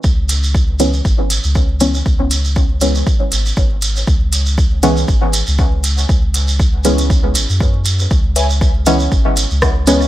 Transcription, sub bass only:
X:1
M:4/4
L:1/16
Q:"Swing 16ths" 1/4=119
K:C#m
V:1 name="Sub bass" clef=bass
C,,8 G,,,3 C,,4- C,, | C,,8 z2 G,,,2 G,,,4 | C,,8 G,,,3 C,,4- C,, | C,,8- C,,2 G,,, F,,4- F,, |
C,,8 G,,,3 C,,4- C,, |]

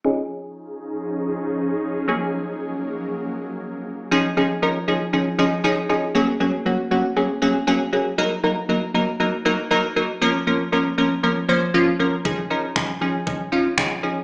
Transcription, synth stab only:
X:1
M:4/4
L:1/8
Q:1/4=118
K:Db
V:1 name="Synth stab"
[F,DEA]8 | [G,B,DA]8 | [F,DEA] [F,DEA] [F,DEB] [F,DEA] [F,DEA] [F,DEA] [F,DEA] [F,DEA] | [G,B,DA] [G,B,DA] [G,B,DG] [G,B,DG] [G,B,DA] [G,B,DA] [G,B,DA] [G,B,DA] |
[G,B,EB] [G,B,EB] [G,B,EB] [G,B,EB] [G,B,EB] [G,B,EB] [G,B,EB] [G,B,EB] | [F,B,DB] [F,B,DB] [F,B,DB] [F,B,DB] [F,B,DB] [F,B,Dc] [F,B,DF] [F,B,DB] | [F,DEA] [F,DEB] [F,DEA] [F,DEA] [F,DEA] [F,DEF] [F,DEA] [F,DEA] |]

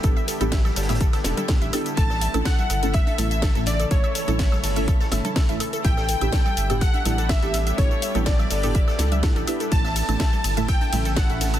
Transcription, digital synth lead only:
X:1
M:4/4
L:1/8
Q:1/4=124
K:Amix
V:1 name="Digital synth lead"
z8 | a2 f2 e3 d | c6- c z | g4 f2 e2 |
c2 d4- d z | a4 g2 f2 |]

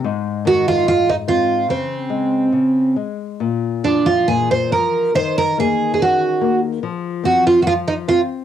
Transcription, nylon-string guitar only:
X:1
M:2/4
L:1/8
Q:1/4=72
K:Bbm
V:1 name="Nylon-string guitar" clef=bass
A,, E, A, C | D, A, D, A, | B,, F, B,, F, | E, B, D B, |
F, C F, C |]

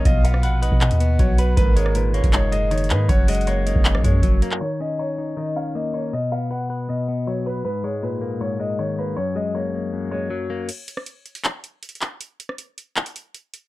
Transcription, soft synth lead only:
X:1
M:4/4
L:1/8
Q:1/4=158
K:Gb
V:1 name="Soft synth lead"
f3 ^d ^f4 | B3 d e4 | g3 e2 d2 B | z8 |
z8 | z8 | z8 | z8 |
z8 |]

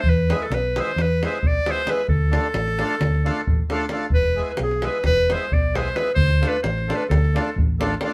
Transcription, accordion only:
X:1
M:9/8
L:1/8
Q:3/8=88
K:none
V:1 name="Accordion"
z [^G,B,E^G] z [G,B,EG] z [G,B,EG] z [G,B,EG] [G,B,EG] | z [A,DFA] z [A,DFA] z [A,DFA] z [A,DFA] [A,DFA] | z [^G,B,E^G] z [G,B,EG] z [G,B,EG] z [G,B,EG] [G,B,EG] | z [A,DFA] z [A,DFA] z [A,DFA] z [A,DFA] [A,DFA] |]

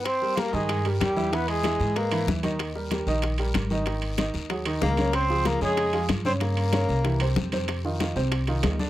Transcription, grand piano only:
X:1
M:4/4
L:1/8
Q:1/4=189
K:Cm
V:1 name="Grand piano"
z [G,GB] [G,GB] [E,Ee]2 [G,GB]2 [=E,=E=e] | [=E,=E=e]2 [E,Ee]2 [^G,^G=B] [E,Ee]2 [_E,_E_e]- | [E,Ee] [G,GB] [G,GB] [E,Ee]2 [G,GB]2 [E,Ee] | [E,Ee]2 [E,Ee]2 [^F,^FA] [E,Ee]2 [_D,_D_d]- |
[_D,_D_d] [F,FA] [F,FA] [D,Dd]2 [F,FA]2 [D,Dd] | [_D,_D_d]2 [D,Dd]2 [=E,=EG] [C,Cc]2 [C,Cc]- | [C,Cc] [E,EF] [E,EF] [C,Cc]2 [E,EF]2 [D,Dd] |]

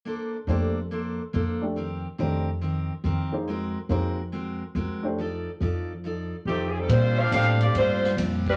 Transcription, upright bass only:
X:1
M:4/4
L:1/8
Q:"Swing" 1/4=140
K:Bb
V:1 name="Upright bass" clef=bass
z2 F,,3 z F,,2- | F,, z F,,3 z F,,2- | F,, z F,,3 z F,,2- | F,, z F,,3 z F,,2 |
B,,2 A,,2 G,,2 F,,2 |]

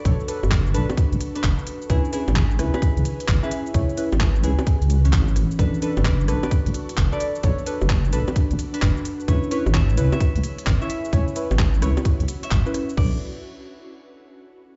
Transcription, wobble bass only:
X:1
M:4/4
L:1/16
Q:"Swing 16ths" 1/4=130
K:Bdor
V:1 name="Wobble bass" clef=bass
B,,, z2 F,,,3 B,,, z2 B,,, z2 F,,, z3 | C,, z2 G,,,3 C,, z2 C,, z2 G,,, z3 | C,, z2 G,,,3 C,, z2 C,,3 G,,,3 z | B,,, z2 F,,,3 B,,, z2 B,,, z2 F,,, z3 |
B,,, z2 F,,,3 B,,, z2 B,,, z2 F,,, z3 | C,, z2 G,,,3 C,, z2 C,, z2 G,,, z3 | C,, z2 G,,,3 C,, z2 C,, z2 G,,, z3 | B,,,2 z12 z2 |]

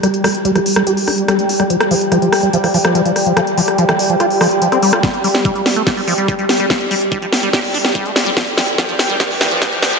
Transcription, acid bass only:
X:1
M:4/4
L:1/16
Q:1/4=144
K:Fmix
V:1 name="Acid bass" clef=bass
G, z G, z G, F, z G, G z D z G, A, z G, | F, z F, z F, F, z G, F, F, F, F, F, F, z F, | F, z F, z F, =E, z F, F z F, z F, C G, F | G, z G, z G, G, z A, G, G, F, G, G, G, z G, |
G, z G, z G, F, z G, G z D z G, A, z G, | F, z F, z F, F, z G, F, F, =E, F, F, F, z F, |]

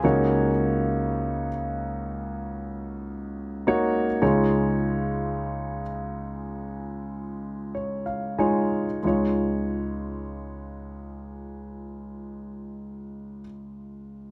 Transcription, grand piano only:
X:1
M:4/4
L:1/16
Q:1/4=50
K:Db
V:1 name="Grand piano"
[B,EGd]6 z8 [B,EGd]2 | [A,EFd]6 z6 d f [A,EFda]2 | [A,EFd]16 |]
V:2 name="Grand piano" clef=bass
[D,,D,]16 | [D,,D,]16 | D,,16 |]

